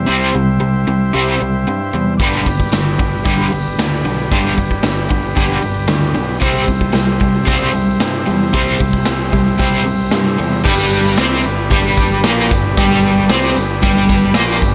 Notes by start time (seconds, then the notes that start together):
Already playing: E4 G4 C5
0.07 C2 C3 G3 C4
0.34 C2 C3 G3
0.60 C2 C3 G3
0.87 C2 C3 G3
1.13 C2 C3 G3 C4
1.40 C2 C3 G3
1.68 G2 C3 G3
1.94 E2 C3 G3
2.17 G1 G2 D4 G4 B4, kick, open hi-hat
2.22 D3 G3
2.46 G1 G2 D3, kick, open hi-hat
2.60 kick
2.72 G1 G2 D3, snare, open hi-hat, tambourine
2.99 G1 G2 D3, kick, open hi-hat
3.25 G1 G2 D3 G3, kick, open hi-hat
3.52 G1 G2 D3, open hi-hat
3.78 D2 G2 D3, snare, open hi-hat, tambourine
4.05 B1 G2 D3, open hi-hat
4.32 G1 G2 D3 G3, kick, open hi-hat
4.57 G1 G2 D3, kick, open hi-hat
4.71 kick
4.83 G1 G2 D3, snare, open hi-hat, tambourine
5.10 G1 G2 D3, kick, open hi-hat
5.36 G1 G2 D3 G3, kick, open hi-hat
5.62 G1 G2 D3, open hi-hat
5.88 D2 G2 D3, snare, open hi-hat, tambourine
6.03 snare
6.14 B1 G2 D3, open hi-hat
6.40 C2 C3 G3 C4 E4, kick, open hi-hat
6.44 G4 C5
6.67 C2 C3 G3, kick, open hi-hat
6.81 kick
6.93 C2 C3 G3, snare, open hi-hat, tambourine
7.20 C2 C3 G3, kick, open hi-hat
7.46 C2 C3 G3 C4, kick, open hi-hat
7.73 C2 C3 G3, open hi-hat
8.00 G2 C3 G3, snare, open hi-hat, tambourine
8.26 E2 C3 G3, open hi-hat
8.53 C2 C3 G3 C4, kick, open hi-hat
8.79 C2 C3 G3, kick, open hi-hat
8.93 kick
9.06 C2 C3 G3, snare, open hi-hat, tambourine
9.33 C2 C3 G3, kick, open hi-hat
9.59 C2 C3 G3 C4, kick, open hi-hat
9.85 C2 C3 G3, open hi-hat
10.11 G2 C3 G3, snare, open hi-hat, tambourine
10.38 E2 C3 G3, open hi-hat
10.64 G1 G2 G3 D4 G4 B4, kick, crash, tambourine
10.92 tambourine
11.17 C2 C3 C4, snare, tambourine, crash
11.44 G1 G2, tambourine
11.71 G1 G2 G3, kick, tambourine, crash
11.97 kick, tambourine
12.24 A#1 A#2 A#3, snare, tambourine, crash
12.51 G1 G2, kick, tambourine
12.77 G1 G2 G3, kick, tambourine, crash
13.03 tambourine
13.30 C2 C3 C4, snare, tambourine, crash
13.56 G1 G2, tambourine
13.82 G1 G2 G3, kick, tambourine, crash
14.09 kick, tambourine
14.34 A#1 A#2 A#3, snare, tambourine, crash
14.62 G1 G2, kick, tambourine